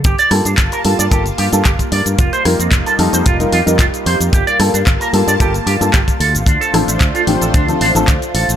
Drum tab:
HH |xxoxxxoxxxoxxxox|xxoxxxoxxxoxxxox|xxoxxxoxxxoxxxox|xxoxxxoxxxoxxxox|
SH |xx-xxx-xxx-xxx-x|xx-xxx-xxx-xxx-x|xx-xxx-xxx-xxx-x|xx-xxx-xxx-xxx-x|
CP |----x-------x---|----x-------x---|----x-------x---|----x-------x---|
SD |--r-------------|--r-------------|--r-------------|--r-------------|
BD |o---o---o---oo--|o---o---o---o---|o---o---o---oo--|o---o---o---o---|